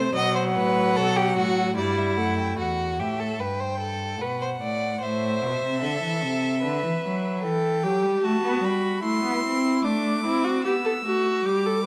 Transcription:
0.00 0.15 C3 medium
0.00 0.15 A3 medium
0.00 0.15 C5 medium
0.00 0.18 C5 medium
0.16 0.58 B2 medium
0.16 1.74 F#3 medium
0.16 0.35 D#5 medium
0.16 1.77 F#5 medium
0.36 0.44 C5 medium
0.56 0.98 A2 medium
0.56 0.98 B4 medium
0.96 1.36 B2 medium
0.96 1.18 A4 medium
1.16 1.36 G4 medium
1.36 1.78 A2 medium
1.36 1.76 F#4 medium
1.77 2.17 G2 medium
1.77 2.19 G3 medium
1.77 2.57 E4 medium
1.77 2.00 D5 medium
1.98 2.18 E5 medium
2.17 2.58 F#2 medium
2.17 2.59 A3 medium
2.17 2.38 F#5 medium
2.39 2.59 G5 medium
2.58 3.01 E2 medium
2.58 3.01 F#4 medium
2.58 3.02 F#5 medium
2.99 3.41 A2 medium
2.99 3.21 G4 medium
2.99 3.42 E5 medium
3.20 3.41 A4 medium
3.40 4.22 G2 medium
3.40 3.62 B4 medium
3.40 4.20 G5 medium
3.60 3.80 C5 medium
3.80 4.23 A4 medium
4.21 4.60 B2 medium
4.21 4.41 B4 medium
4.21 5.04 F#5 medium
4.42 4.50 C5 medium
4.61 5.01 A2 medium
4.61 5.01 D5 medium
5.02 5.43 A2 medium
5.02 5.81 C5 medium
5.02 7.43 E5 medium
5.42 5.62 B2 medium
5.62 5.84 C3 medium
5.82 6.02 D3 medium
5.82 6.61 A4 medium
6.02 6.24 E3 medium
6.23 6.65 C3 medium
6.63 6.83 D3 medium
6.63 7.42 B4 medium
6.83 6.91 E3 medium
7.03 7.45 F#3 medium
7.43 7.85 E3 medium
7.43 7.85 A4 medium
7.43 8.22 G5 medium
7.83 8.05 F#3 medium
7.83 8.25 G4 medium
8.03 8.23 G3 medium
8.24 8.43 A3 medium
8.24 9.04 F#4 medium
8.24 8.66 A5 medium
8.44 8.63 B3 medium
8.63 9.03 G3 medium
8.63 9.04 B5 medium
9.04 9.23 A3 medium
9.04 9.86 E4 medium
9.04 9.83 C6 medium
9.24 9.43 B3 medium
9.44 9.84 C4 medium
9.84 10.26 A3 medium
9.84 10.24 D4 medium
9.84 10.64 D6 medium
10.24 10.66 C4 medium
10.24 10.46 E4 medium
10.44 10.64 F#4 medium
10.65 11.04 B3 medium
10.65 10.73 G4 medium
10.65 11.44 E6 medium
10.85 10.93 A4 medium
11.05 11.44 A3 medium
11.05 11.47 F#4 medium
11.45 11.86 G3 medium
11.45 11.67 G4 medium
11.45 11.86 D6 medium
11.66 11.85 A4 medium

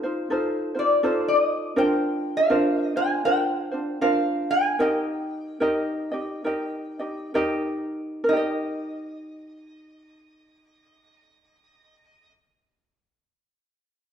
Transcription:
0.00 0.30 F4 medium
0.00 0.30 C5 medium
0.00 0.27 F5 medium
0.05 0.30 D#4 medium
0.30 0.75 D#4 medium
0.30 0.75 F4 medium
0.30 0.75 A4 medium
0.30 0.73 C5 medium
0.75 1.02 D#4 soft
0.75 1.03 F4 soft
0.75 1.03 C5 soft
0.79 1.28 D5 medium
1.03 1.76 D#4 medium
1.03 1.76 F4 medium
1.03 1.76 A4 medium
1.03 1.77 C5 medium
1.28 1.79 D#5 medium
1.76 2.49 D4 medium
1.76 2.49 F4 medium
1.76 2.49 A#4 medium
1.76 2.50 C5 medium
1.76 2.38 G5 loud
2.37 2.85 F5 loud
2.50 2.95 D4 medium
2.50 2.95 F4 medium
2.50 2.95 A#4 medium
2.50 2.95 C5 medium
2.85 2.98 D#5 loud
2.96 3.24 D4 soft
2.96 3.24 F4 medium
2.96 3.24 C5 medium
2.96 3.23 G#5 medium
3.25 3.71 D4 medium
3.25 3.72 F4 medium
3.25 3.71 A#4 medium
3.25 3.70 C5 medium
3.25 4.03 G5 loud
3.72 4.00 D4 soft
3.72 4.01 F4 soft
3.72 4.00 C5 soft
4.01 4.79 D4 medium
4.01 4.79 F4 medium
4.01 4.79 A#4 medium
4.01 4.80 C5 medium
4.01 4.50 F5 medium
4.51 4.80 G#5 loud
4.79 5.61 D#4 medium
4.79 5.61 G4 medium
4.79 5.60 A#4 medium
4.79 5.61 D#5 medium
4.79 7.30 G5 medium
5.60 6.12 D#4 medium
5.60 6.12 G4 medium
5.60 6.12 A#4 medium
5.60 6.10 D#5 loud
6.12 6.44 D#4 medium
6.12 6.44 G4 medium
6.12 6.44 D#5 medium
6.44 6.99 D#4 medium
6.44 6.99 G4 medium
6.44 6.99 A#4 medium
6.44 6.98 D#5 medium
6.99 7.34 D#4 soft
6.99 7.34 G4 medium
6.99 7.34 D#5 medium
7.34 8.28 D#4 medium
7.34 8.32 G4 loud
7.34 8.24 A#4 medium
7.34 8.23 D#5 loud
8.24 8.36 A#4 medium
8.29 12.35 D#4 medium
8.29 12.31 D#5 medium
8.33 12.39 G4 medium
8.37 12.43 D#5 medium

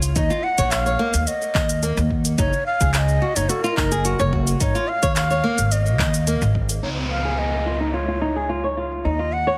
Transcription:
0.00 0.11 C#2 medium
0.00 0.14 F4 medium
0.00 closed hi-hat medium
0.00 cabasa medium
0.16 0.27 D#2 loud
0.16 0.29 D#4 medium
0.16 0.45 D#5 loud
0.16 kick loud
0.16 closed hi-hat soft
0.16 cabasa medium
0.30 0.43 F4 medium
0.30 cabasa soft
0.43 0.72 F#5 loud
0.58 0.94 A#1 medium
0.58 0.85 C#5 loud
0.58 kick loud
0.58 closed hi-hat medium
0.58 cabasa medium
0.71 1.29 F5 loud
0.71 clap medium
0.71 closed hi-hat soft
0.71 cabasa medium
0.86 0.99 C#5 medium
0.86 cabasa soft
0.99 1.13 A#3 loud
1.14 1.24 D#2 medium
1.14 closed hi-hat medium
1.14 cabasa medium
1.27 2.10 D#5 medium
1.27 closed hi-hat soft
1.27 cabasa medium
1.42 cabasa soft
1.55 1.92 D#2 medium
1.55 1.69 D#5 medium
1.55 kick loud
1.55 clap medium
1.69 closed hi-hat medium
1.69 cabasa medium
1.83 1.96 A#3 medium
1.83 closed hi-hat soft
1.83 cabasa medium
1.97 2.33 D#2 loud
1.97 cabasa soft
2.10 kick medium
2.25 closed hi-hat medium
2.25 cabasa medium
2.38 2.49 F#1 loud
2.38 2.52 D#4 medium
2.38 2.64 C#5 loud
2.38 kick loud
2.38 closed hi-hat soft
2.38 cabasa medium
2.53 cabasa soft
2.66 2.92 F5 loud
2.81 3.17 C#2 loud
2.81 3.20 G#4 medium
2.81 kick loud
2.81 closed hi-hat medium
2.81 cabasa medium
2.94 2.99 F5 loud
2.94 clap medium
2.94 closed hi-hat soft
2.94 cabasa medium
2.98 3.38 D#5 loud
3.08 cabasa soft
3.22 3.35 F#4 medium
3.36 3.46 F#1 medium
3.36 3.48 D#4 medium
3.36 3.51 C#5 medium
3.36 closed hi-hat medium
3.36 cabasa medium
3.49 3.63 F#4 medium
3.49 3.61 A4 medium
3.49 closed hi-hat soft
3.49 cabasa medium
3.61 3.76 F4 loud
3.61 4.33 A#4 medium
3.61 cabasa soft
3.77 4.14 F#1 medium
3.77 3.90 D#4 loud
3.77 kick medium
3.77 clap medium
3.92 4.03 G#4 medium
3.92 closed hi-hat medium
3.92 cabasa medium
4.05 4.19 F#4 loud
4.05 closed hi-hat soft
4.05 cabasa medium
4.19 4.55 F#1 loud
4.19 4.32 C#5 medium
4.19 cabasa soft
4.33 4.59 F#4 medium
4.33 kick loud
4.47 closed hi-hat medium
4.47 cabasa medium
4.60 4.72 G#1 loud
4.60 4.73 D#4 medium
4.60 4.90 C#5 loud
4.60 kick loud
4.60 closed hi-hat soft
4.60 cabasa medium
4.75 4.88 F4 loud
4.75 cabasa soft
4.88 5.15 F5 loud
5.03 5.39 D#2 loud
5.03 5.29 C#5 loud
5.03 kick loud
5.03 closed hi-hat medium
5.03 cabasa medium
5.16 5.73 F5 loud
5.16 clap medium
5.16 closed hi-hat soft
5.16 cabasa medium
5.30 5.43 C#5 medium
5.30 cabasa soft
5.44 5.57 A#3 loud
5.58 5.99 G#1 medium
5.58 closed hi-hat medium
5.58 cabasa medium
5.72 6.55 D#5 loud
5.72 closed hi-hat soft
5.72 cabasa medium
5.86 cabasa soft
5.99 6.36 D#2 medium
5.99 6.13 D#5 medium
5.99 kick loud
5.99 clap medium
6.14 closed hi-hat medium
6.14 cabasa medium
6.27 6.41 A#3 medium
6.27 closed hi-hat soft
6.27 cabasa medium
6.42 6.78 G#1 medium
6.42 cabasa soft
6.55 kick medium
6.69 closed hi-hat medium
6.69 cabasa medium
6.83 9.02 C#2 medium
6.83 6.96 D#4 medium
6.83 6.89 C#5 medium
6.83 downlifter medium
7.10 7.40 F5 medium
7.25 7.65 G#4 medium
7.38 7.95 D#5 medium
7.38 cabasa soft
7.66 7.79 F4 medium
7.80 7.92 D#4 medium
7.94 8.07 F4 medium
7.94 8.77 C#5 medium
7.94 cabasa medium
8.08 8.21 F4 medium
8.21 8.35 D#4 medium
8.36 8.48 G#4 medium
8.36 cabasa medium
8.49 8.63 F4 medium
8.49 cabasa soft
8.64 8.76 C#5 medium
8.64 cabasa soft
8.77 9.04 F4 medium
8.92 cabasa medium
9.05 9.58 D#2 medium
9.05 9.18 D#4 medium
9.05 9.34 D#5 medium
9.05 cabasa soft
9.19 9.32 F4 medium
9.19 cabasa soft
9.33 9.58 F#5 loud
9.47 9.58 C#5 medium
9.47 cabasa medium

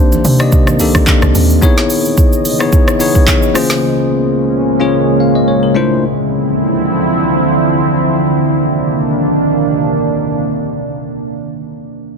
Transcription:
0.00 0.21 C2 loud
0.00 1.60 C3 medium
0.00 1.60 D#3 medium
0.00 0.19 A#3 loud
0.00 1.60 A#3 medium
0.00 1.60 C4 medium
0.00 0.20 D4 loud
0.00 0.20 D#4 loud
0.00 0.20 G4 loud
0.00 0.20 C5 loud
0.12 high conga medium
0.12 shaker medium
0.25 0.81 C3 loud
0.25 open hi-hat medium
0.25 high conga medium
0.25 shaker medium
0.39 0.72 A#3 medium
0.39 0.72 D#4 medium
0.39 0.73 G4 medium
0.39 0.72 D5 medium
0.39 0.73 D#5 loud
0.39 cross-stick loud
0.39 shaker medium
0.52 kick loud
0.52 shaker medium
0.67 cross-stick medium
0.67 high conga medium
0.67 shaker medium
0.79 1.04 C2 loud
0.79 1.47 A#3 medium
0.79 1.47 D4 medium
0.79 1.47 D#4 medium
0.79 1.47 G4 medium
0.79 1.48 A4 loud
0.79 open hi-hat medium
0.79 shaker loud
0.95 kick medium
0.95 cross-stick loud
0.95 high conga medium
0.95 shaker medium
1.07 kick loud
1.07 clap medium
1.07 high conga soft
1.07 shaker medium
1.22 1.33 C2 loud
1.22 cross-stick loud
1.22 shaker soft
1.35 1.59 D#2 medium
1.35 open hi-hat medium
1.35 high conga medium
1.35 low conga medium
1.35 shaker loud
1.50 shaker medium
1.61 3.53 C#3 medium
1.61 3.53 E3 medium
1.61 2.40 B3 loud
1.61 3.53 B3 medium
1.61 2.40 D#4 loud
1.61 2.40 E4 loud
1.61 2.40 G#4 loud
1.61 2.40 C#5 loud
1.61 3.53 D#5 medium
1.61 kick loud
1.61 shaker medium
1.78 snare medium
1.78 shaker medium
1.90 open hi-hat medium
1.90 shaker medium
2.05 shaker medium
2.17 kick loud
2.17 shaker medium
2.33 shaker medium
2.45 open hi-hat medium
2.45 shaker loud
2.59 2.92 B3 medium
2.59 2.92 D#4 medium
2.59 2.93 E4 medium
2.59 2.93 G#4 medium
2.59 2.93 C#5 loud
2.59 cross-stick medium
2.59 shaker soft
2.73 kick loud
2.73 shaker medium
2.88 cross-stick loud
2.88 shaker medium
2.99 3.45 B3 medium
2.99 3.45 D#4 medium
2.99 3.45 E4 medium
2.99 3.45 G#4 medium
2.99 3.46 C#5 loud
2.99 open hi-hat medium
2.99 shaker medium
3.15 kick medium
3.15 shaker medium
3.28 kick loud
3.28 snare medium
3.28 clap medium
3.28 shaker medium
3.43 shaker medium
3.54 5.73 C#3 medium
3.54 5.73 G#3 medium
3.54 4.43 A#3 loud
3.54 5.73 A#3 medium
3.54 4.43 C#4 medium
3.54 5.73 C#4 medium
3.54 4.44 F4 medium
3.54 4.44 G#4 medium
3.54 4.44 C5 loud
3.54 cross-stick medium
3.54 open hi-hat medium
3.54 shaker medium
3.70 snare medium
3.70 shaker medium
4.79 5.12 A#3 medium
4.79 5.13 C#4 medium
4.79 5.13 F4 medium
4.79 5.13 G#4 medium
4.79 5.13 C#5 loud
5.20 5.35 F5 medium
5.35 5.47 D#5 medium
5.48 5.62 C#5 medium
5.63 5.89 A#4 medium
5.75 8.20 D3 medium
5.75 8.20 F3 medium
5.75 5.97 A3 loud
5.75 8.20 C4 medium
5.75 5.98 D4 medium
5.75 8.20 E4 medium
5.75 5.98 E4 medium
5.75 5.98 F4 medium
5.75 5.98 C5 loud
8.23 11.19 C3 medium
8.23 11.19 D#3 medium
8.23 11.19 A#3 medium
8.23 11.19 D4 medium

